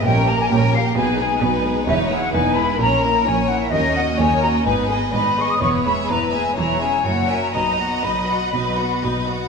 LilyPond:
<<
  \new Staff \with { instrumentName = "Flute section" } { \time 4/4 \key b \major \tempo 4 = 126 g''8 bes''16 gis''16 g''8 eis''16 g''16 gis''4. r8 | e''8 fis''8 gis''8 b''8 ais''8 ais''8 gis''8 fis''16 e''16 | dis''8 fis''8 gis''8 ais''8 gis''8 gis''8 b''8 cis'''16 dis'''16 | cis'''8 b''8 ais''8 gis''8 ais''8 gis''8 fis''8 gis''16 ais''16 |
ais''4 b''2~ b''8 r8 | }
  \new Staff \with { instrumentName = "Violin section" } { \time 4/4 \key b \major bes'2 gis'4 b'4 | cis''4 b'4 ais'4 cis''4 | dis''4 cis''4 b'4 dis''4 | cis''4 b'4 cis''2 |
dis''2.~ dis''8 r8 | }
  \new Staff \with { instrumentName = "Violin section" } { \time 4/4 \key b \major <bes' des''>8 <g' bes'>8 <bes' des''>8 <g' bes'>8 <b b'>8 <dis' gis'>8 <b b'>8 <dis' gis'>8 | <dis' b'>8 <e' gis'>8 <dis' b'>8 <e' gis'>8 <cis' cis''>8 <e' ais'>8 <cis' cis''>8 <e' ais'>8 | <ais' cis''>8 <fis' dis''>8 <ais' cis''>8 <fis' dis''>8 b'8 <gis' dis''>8 b'8 <gis' dis''>8 | b'8 <gis' e''>8 b'8 <gis' e''>8 <e' cis''>8 <gis' e''>8 <fis' cis''>8 <ais' e''>8 |
<b' dis''>8 <fis' fis''>8 <b' dis''>8 <fis' fis''>8 <b' dis''>8 <fis' fis''>8 <b' dis''>8 <fis' fis''>8 | }
  \new Staff \with { instrumentName = "Viola section" } { \time 4/4 \key b \major <g des'>8 bes8 <g des'>8 bes8 <b dis'>8 <gis b>8 <b dis'>8 <gis b>8 | <b dis'>8 <gis e'>8 <b dis'>8 <gis e'>8 cis'8 ais8 cis'8 ais8 | <cis' dis'>8 <ais cis'>8 <cis' dis'>8 <ais cis'>8 <b dis'>8 <gis b>8 <b dis'>8 <gis b>8 | <b e'>8 <gis b>8 <b e'>8 <gis b>8 <e e'>8 <gis cis'>8 <ais e'>8 <cis' fis'>8 |
<fis dis'>8 <b fis'>8 <fis dis'>8 <b fis'>8 <fis dis'>8 <b fis'>8 <fis dis'>8 <b fis'>8 | }
  \new Staff \with { instrumentName = "Cello section" } { \clef bass \time 4/4 \key b \major bes,4 bes,4 b,4 b,4 | e,4 e,4 ais,4 ais,4 | dis,4 dis,4 gis,4 gis,4 | e,4 e,4 e,4 fis,4 |
b,4 b,4 b,4 b,4 | }
  \new Staff \with { instrumentName = "Double bass section" } { \clef bass \time 4/4 \key b \major bes,,4 bes,,4 b,,4 b,,4 | e,,4 e,,4 ais,,4 ais,,4 | dis,4 dis,4 gis,,4 gis,,4 | e,,4 e,,4 e,,4 fis,,4 |
b,,4 b,,4 b,,4 b,,4 | }
>>